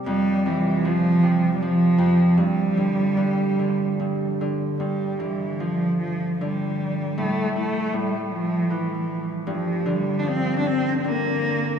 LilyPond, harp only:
\new Staff \with { instrumentName = "Harp" } { \clef bass \time 3/4 \key f \major \tempo 4 = 76 f,8 c8 f8 c8 f8 f,8 | g,8 d8 g,8 d8 g,8 d8 | g,8 d8 f4 d4 | a,8 e'8 a,4 e4 |
g,8 d8 f4 d4 | }